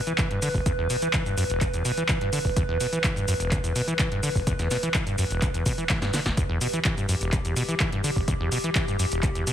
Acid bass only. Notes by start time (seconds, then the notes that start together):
0.07 E3
0.18 E3
0.31 G2
0.42 D3
0.55 E1
0.66 E2
0.78 E2
0.90 B2
1.02 E3
1.14 E3
1.26 G2
1.37 F#2
1.50 E1
1.61 E2
1.73 E2
1.85 B2
1.97 E3
2.09 E3
2.21 G2
2.33 D3
2.45 E1
2.57 E2
2.69 E2
2.80 B2
2.92 E3
3.04 E3
3.16 G2
3.28 F#2
3.40 E1
3.52 E2
3.64 E2
3.75 B2
3.88 E3
3.99 E3
4.12 G2
4.23 D3
4.35 E1
4.47 E2
4.59 E2
4.71 B2
4.83 E3
4.95 E3
5.07 G2
5.18 F#2
5.30 E1
5.42 E2
5.54 E2
5.66 B2
5.78 E3
5.90 E3
6.02 G2
6.13 D3
6.26 E1
6.37 E2
6.50 E2
6.61 B2
6.73 E3
6.85 E3
6.97 G2
7.09 F#2
7.21 E1
7.33 E2
7.45 E2
7.56 B2
7.69 E3
7.80 E3
7.92 G2
8.04 D3
8.16 E1
8.28 E2
8.40 E2
8.52 B2
8.64 E3
8.75 E3
8.88 G2
8.99 F#2
9.12 E1
9.23 E2
9.35 E2
9.47 B2